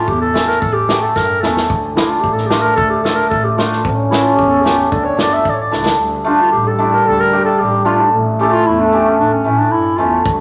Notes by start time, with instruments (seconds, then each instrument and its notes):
0.07 double bass E2, clarinet G4, kick
0.21 clarinet A4
0.34 hammered dulcimer A3 C#4 E4, snare
0.48 clarinet A#4, snare
0.60 double bass A1, clarinet A4, kick
0.73 clarinet G4
0.88 hammered dulcimer A3 C#4 G4, snare
1.02 clarinet A4
1.16 double bass G2, clarinet A#4, kick, snare
1.40 double bass E2, hammered dulcimer A3 C#4 E4, clarinet A4, snare
1.57 snare
1.69 double bass D2, trombone A3, kick
1.95 hammered dulcimer A3 D4 F4, clarinet E4, snare
2.10 clarinet F4
2.21 double bass A1, clarinet G4, kick
2.33 clarinet A4
2.38 snare
2.47 hammered dulcimer A3 D4, clarinet G4
2.51 hammered dulcimer F4, snare
2.61 clarinet A#4
2.76 double bass D2, clarinet A4, kick
2.90 clarinet G4
3.03 hammered dulcimer A3 D4 F4, clarinet A4, snare
3.15 clarinet A#4
3.30 double bass A1, clarinet A4, kick
3.44 clarinet G4
3.57 hammered dulcimer A3 D4 F4, clarinet F4, snare
3.72 snare
3.85 double bass A1, trombone C#4, kick
4.11 hammered dulcimer A3 C#4 E4, clarinet E4, snare
4.23 clarinet F4
4.36 double bass E2, clarinet G4, kick
4.50 clarinet A4
4.61 hammered dulcimer A3 C#4, clarinet G4
4.65 clarinet F4, hammered dulcimer G4, snare
4.79 clarinet G4
4.92 double bass D2, trombone D4, clarinet A4, kick
5.05 clarinet C#5
5.17 double bass G1, hammered dulcimer A3 D4 F4, snare
5.21 clarinet D5
5.34 clarinet E5
5.45 double bass A1, kick
5.49 clarinet C#5 D5
5.59 clarinet D5
5.71 double bass C#2, hammered dulcimer A3 D4 E4, snare
5.86 snare
5.99 double bass D2, trombone G3
6.25 hammered dulcimer A3 D4 F4, clarinet D4
6.41 clarinet F4
6.52 double bass A1, clarinet G4
6.67 clarinet A4
6.79 hammered dulcimer A3 D4 E4
6.93 clarinet A#4
7.05 double bass D2, clarinet A4
7.20 clarinet A#4
7.32 hammered dulcimer A3 D4 G4
7.46 clarinet A4
7.59 double bass A1, clarinet G4
7.85 hammered dulcimer A3 D4 F4, clarinet F4
8.12 double bass A1, trombone A3
8.39 hammered dulcimer A3 C#4 E4, clarinet G4 A4
8.47 clarinet G4
8.52 clarinet F4
8.66 double bass E2, clarinet E4
8.80 clarinet D4
8.92 hammered dulcimer A3 C#4 G4
9.07 clarinet C#4
9.18 double bass A1, clarinet D4
9.33 clarinet C#4
9.44 double bass A2, hammered dulcimer A3 C#4 E4
9.59 clarinet D4
9.71 double bass G2, clarinet E4
9.97 double bass E2, hammered dulcimer A3 C#4 E4, clarinet F4
10.25 double bass D2, trombone G3, kick